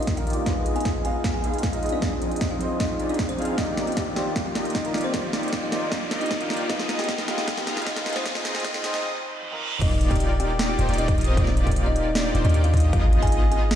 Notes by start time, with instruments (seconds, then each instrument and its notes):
Already playing: grand piano D#3 D4 F4 G4 A#4 C5 D5, supersaw synth A#3 D#4 F4 G4 D#5, kalimba D#4 D#5, riser
0.03 closed hi-hat
0.07 kick, snare, closed hi-hat
0.16 grand piano D#3 D4 F4 A#4, kalimba F4 F5, closed hi-hat
0.27 supersaw synth A#3 D#4 F4 G4 D5, closed hi-hat
0.30 closed hi-hat
0.33 closed hi-hat
0.44 grand piano G#3 D#4 F4, supersaw synth B3 D#4 F4 G#4 D#5, kalimba F4 F5, kick, snare, closed hi-hat
0.48 grand piano B4
0.66 closed hi-hat
0.76 kalimba G#4 G#5, closed hi-hat
0.80 closed hi-hat
0.85 kick, snare, closed hi-hat
1.03 grand piano G#3 D#4 F4 F5, kalimba G#4 G#5, closed hi-hat
1.24 kick, snare, closed hi-hat
1.34 kalimba G#4 G#5
1.44 supersaw synth B3 D#4 F4 G#4 F5, closed hi-hat
1.54 closed hi-hat
1.58 closed hi-hat
1.63 kalimba F4 F5, kick, snare, closed hi-hat
1.72 grand piano G#3 D#4 F4 D#5, closed hi-hat
1.83 supersaw synth B3 D#4 F4 G#4 D#5, closed hi-hat
1.86 closed hi-hat
1.89 kalimba D4 D5, closed hi-hat
2.00 grand piano F3 C4 D#4 G#4, supersaw synth C4 D#4 F4 G#4 D#5, kick, snare, closed hi-hat
2.22 closed hi-hat
2.31 closed hi-hat
2.36 closed hi-hat
2.41 kick, snare, closed hi-hat
2.51 kalimba F4 F5
2.59 grand piano F3 C4 D#4 C5, closed hi-hat
2.80 kalimba D#4 D#5, kick, snare, closed hi-hat
3.00 supersaw synth C4 D#4 F4 G#4 D5, closed hi-hat
3.09 supersaw synth C4 D#4 F4 G#4 D#5, kalimba D4 D5, closed hi-hat
3.14 closed hi-hat
3.19 kick, snare, closed hi-hat
3.29 kalimba C4 C5, closed hi-hat
3.38 grand piano F3 C4 D#4 G#4, supersaw synth C4 D#4 F4 G#4 F5, closed hi-hat
3.42 closed hi-hat
3.45 closed hi-hat
3.56 grand piano D#3 F4 G4 D5, supersaw synth A#3 D#4 F4 G4 D5, kalimba D#4 D#5, kick, snare, closed hi-hat
3.77 snare, closed hi-hat
3.87 kalimba G4 G5, closed hi-hat
3.92 closed hi-hat
3.97 kick, snare, closed hi-hat
4.14 grand piano D#3 F4 D5, kalimba G4 G5, snare, closed hi-hat
4.18 grand piano C5
4.36 kick, snare, closed hi-hat
4.46 kalimba G4 G5
4.55 supersaw synth A#3 D#4 F4 G4 D#5, snare, closed hi-hat
4.65 closed hi-hat
4.70 closed hi-hat
4.75 kalimba D#4 D#5, kick, snare, closed hi-hat
4.84 grand piano D#3 D4 F4 A#4, closed hi-hat
4.94 supersaw synth A#3 D#4 F4 G4 D5, snare, closed hi-hat
4.98 closed hi-hat
5.01 kalimba C4 C5, closed hi-hat
5.12 grand piano D#3 F4 G4 D5, supersaw synth A#3 D#4 F4 G4 D5, kick, snare, closed hi-hat
5.33 snare, closed hi-hat
5.43 closed hi-hat
5.48 closed hi-hat
5.53 kick, snare, closed hi-hat
5.63 kalimba D#4 D#5
5.70 grand piano D#3 F4 C5 D5, snare, closed hi-hat
5.92 kalimba D4 D5, kick, snare, closed hi-hat
6.11 supersaw synth A#3 D#4 F4 G4 D#5, snare, closed hi-hat
6.21 kalimba D#4 D#5, closed hi-hat
6.26 closed hi-hat
6.31 kick, snare, closed hi-hat
6.40 grand piano D#3 D4 F4 A#4, kalimba F4 F5, closed hi-hat
6.50 supersaw synth A#3 D#4 F4 G4 D5, snare, closed hi-hat
6.53 closed hi-hat
6.57 closed hi-hat
6.68 grand piano G#3 D#4 F4, supersaw synth B3 D#4 F4 G#4 D#5, kalimba D#4 D#5, kick, snare, closed hi-hat
6.72 grand piano B4
6.79 snare
6.89 snare, closed hi-hat
6.99 kalimba G4 G5, snare, closed hi-hat
7.04 closed hi-hat
7.09 kick, snare, closed hi-hat
7.18 snare
7.26 grand piano G#3 D#4 F4, kalimba G4 G5, snare, closed hi-hat
7.30 grand piano F5
7.38 snare
7.48 kick, snare, closed hi-hat
7.57 kalimba G4 G5, snare
7.67 supersaw synth B3 D#4 F4 G#4 F5, snare, closed hi-hat
7.77 snare, closed hi-hat
7.82 closed hi-hat
7.87 kalimba D#4 D#5, kick, snare, closed hi-hat
7.95 grand piano G#3 D#4 F4 D#5, snare, closed hi-hat
8.06 supersaw synth B3 D#4 F4 G#4 D#5, snare, closed hi-hat
8.09 closed hi-hat
8.13 kalimba C4 C5, snare, closed hi-hat
8.23 grand piano F3 C4 D#4 G#4, supersaw synth C4 D#4 F4 G#4 D#5, kick, snare, closed hi-hat
8.35 snare
8.45 snare, closed hi-hat
8.55 snare, closed hi-hat
8.60 closed hi-hat
8.64 kick, snare, closed hi-hat
8.74 kalimba D#4 D#5, snare
8.82 grand piano F3 C4 D#4 C5, snare, closed hi-hat
8.94 snare
9.03 reverse cymbal
9.42 high tom
9.51 grand piano F3 C4 D#4 A#4, high tom
9.72 mid tom
9.81 808-style bass D#1, supersaw synth A#3 D#4 F4 G4 D5, kalimba D#4 D#5, digital synth lead D5, kick, closed hi-hat, crash
10.01 closed hi-hat
10.11 kalimba G4 G5, kick, closed hi-hat
10.16 closed hi-hat
10.20 closed hi-hat
10.40 kalimba G4 G5, closed hi-hat
10.59 snare, closed hi-hat
10.69 kalimba G4 G5
10.79 808-style bass D#1, supersaw synth A#3 D#4 F4 G4 C5, digital synth lead C5, closed hi-hat
10.89 808-style bass D#1, supersaw synth A#3 D#4 F4 G4 D5, digital synth lead D5, closed hi-hat
10.94 closed hi-hat
10.98 kalimba D#4 D#5, closed hi-hat
11.08 kick, closed hi-hat
11.18 808-style bass D#1, supersaw synth A#3 D#4 F4 G4 D#5, digital synth lead D#5, closed hi-hat
11.21 closed hi-hat
11.24 kalimba C4 C5, closed hi-hat
11.37 808-style bass D#1, supersaw synth A#3 D#4 F4 G4 D5, digital synth lead D5, kick, closed hi-hat
11.47 snare
11.57 closed hi-hat
11.67 kick, closed hi-hat
11.71 closed hi-hat
11.76 closed hi-hat
11.86 kalimba D#4 D#5
11.96 closed hi-hat
12.15 kalimba D4 D5, snare, closed hi-hat
12.35 808-style bass D#1, supersaw synth A#3 D#4 F4 G4 C5, digital synth lead C5, closed hi-hat
12.44 808-style bass D#2, supersaw synth A#3 D#4 F4 G4 D5, kalimba D#4 D#5, digital synth lead D5, closed hi-hat
12.49 closed hi-hat
12.54 closed hi-hat
12.64 kalimba F4 F5, closed hi-hat
12.74 808-style bass D#2, supersaw synth A#3 D#4 F4 G4 D#5, digital synth lead D#5, kick, closed hi-hat
12.77 closed hi-hat
12.80 closed hi-hat
12.93 808-style bass G#1, supersaw synth B3 D#4 F4 G#4 D#5, kalimba F4 F5, digital synth lead D#5, kick, closed hi-hat
13.13 closed hi-hat
13.22 kalimba G#4 G#5, kick, closed hi-hat
13.27 closed hi-hat
13.32 closed hi-hat
13.52 kalimba G#4 G#5, closed hi-hat
13.71 snare, closed hi-hat